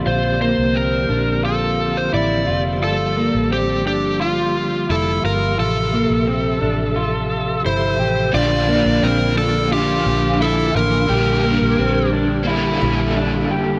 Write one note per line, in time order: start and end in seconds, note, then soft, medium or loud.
0.00 5.54 D3 medium
0.00 8.29 F3 medium
0.00 5.54 A#3 soft
0.00 2.77 C4 medium
0.00 8.30 G4 medium
0.05 0.55 A#1 loud
0.05 0.40 F4 medium
0.05 0.40 C5 medium
0.40 0.75 A#3 medium
0.40 0.76 C5 medium
0.58 1.07 C2 medium
0.74 1.08 C4 medium
0.74 1.45 A#4 medium
1.09 2.09 A#1 medium
1.09 1.44 D4 medium
1.43 2.12 F4 medium
1.43 1.98 A4 medium
1.97 2.14 C5 medium
2.13 2.46 A1 medium
2.13 2.47 E4 medium
2.13 2.62 D5 medium
2.47 2.82 F1 medium
2.47 2.81 F4 medium
2.82 3.31 G1 medium
2.82 5.55 G3 soft
2.82 3.16 F4 medium
2.82 3.52 A4 medium
3.16 3.51 A#3 medium
3.34 3.86 A1 medium
3.51 3.85 C4 medium
3.51 3.86 G4 medium
3.86 4.85 G1 medium
3.86 4.20 D4 medium
3.86 4.21 G4 medium
4.20 4.89 F4 medium
4.20 4.92 F4 medium
4.89 5.22 F1 medium
4.89 5.23 E4 medium
4.89 5.25 A4 medium
5.24 5.56 G1 medium
5.24 5.57 F4 medium
5.24 5.59 A#4 medium
5.58 6.07 A1 medium
5.58 8.31 C3 medium
5.58 5.92 F4 medium
5.58 8.31 A4 medium
5.58 7.62 A4 medium
5.58 8.31 E5 medium
5.93 6.27 A#3 medium
6.10 6.59 A#1 medium
6.27 6.61 C4 medium
6.61 7.61 A1 medium
6.61 6.96 D4 medium
6.96 7.64 F4 medium
7.65 7.97 G1 medium
7.65 7.99 E4 medium
7.65 8.34 C5 medium
7.99 8.32 A1 medium
7.99 8.33 G4 medium
8.32 8.83 A#1 loud
8.32 13.79 D3 medium
8.32 11.07 F3 medium
8.32 8.67 A#3 medium
8.32 11.07 A#3 medium
8.32 8.68 D4 medium
8.32 11.07 D4 medium
8.32 8.68 F4 medium
8.32 9.05 D5 loud
8.37 8.70 A#4 medium
8.68 9.03 A#3 medium
8.68 9.72 D4 medium
8.68 9.72 F4 medium
8.85 9.02 A#1 medium
9.02 10.02 A#1 loud
9.02 9.36 C4 medium
9.02 9.38 A#4 loud
9.37 9.71 D4 medium
9.37 9.70 A4 medium
9.68 11.07 A#3 medium
9.68 10.40 F4 medium
9.73 11.09 D4 medium
9.73 11.10 F4 medium
9.73 10.43 G4 medium
10.06 10.72 A#1 loud
10.40 10.74 E4 medium
10.40 10.76 A4 medium
10.75 11.08 A1 medium
10.75 11.09 F4 medium
10.75 12.10 A#4 medium
11.08 11.59 A#1 loud
11.08 13.79 G3 medium
11.08 11.43 A#3 medium
11.08 11.44 D4 medium
11.08 13.79 G4 medium
11.08 11.44 G4 medium
11.43 11.78 A#3 medium
11.43 12.48 G4 medium
11.48 12.47 D4 medium
11.61 11.78 A#1 loud
11.78 12.78 A#1 loud
11.78 12.12 C4 medium
12.13 12.47 D4 medium
12.43 13.79 A#3 medium
12.43 13.16 E4 medium
12.49 13.79 D4 medium
12.53 13.79 G4 medium
12.53 13.79 A4 medium
12.81 13.51 A#1 loud
12.81 13.79 E4 medium
13.16 13.51 D4 medium
13.51 13.79 F1 loud
13.51 13.79 G4 medium